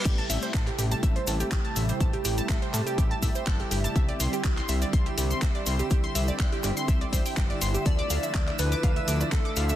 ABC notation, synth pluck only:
X:1
M:4/4
L:1/16
Q:1/4=123
K:Am
V:1 name="Synth pluck"
G a e c a G G a e c a G G a e c | a G G a e c a G G a e c a G G a | e d c' G G c' e d c' G G c' e d c' G | G c' e d c' G G c' e d c g G d c' G |
A d' f e d' d A d' f e d' d A d' f e |]